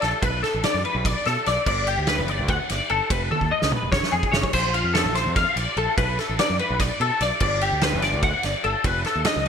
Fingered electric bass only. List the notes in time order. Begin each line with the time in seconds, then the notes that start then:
0.03 A#1
0.23 B1
0.54 A1
0.74 F#2
0.95 B1
1.26 B2
1.47 B1
1.67 G1
1.98 D2
2.18 G1
2.39 D2
2.70 G1
2.90 G1
3.10 F1
3.41 D#2
3.63 C#2
3.83 F1
4.12 F2
4.32 F1
4.53 A#1
4.84 F2
5.04 A#1
5.25 F2
5.56 A#1
5.77 A#1
5.98 B1
6.29 A1
6.50 F#2
6.70 B1
7.00 B2
7.21 B1
7.41 G1
7.72 D2
7.93 G1
8.13 D2
8.44 G1
8.64 G1
8.84 F1
9.16 D#2
9.36 C#2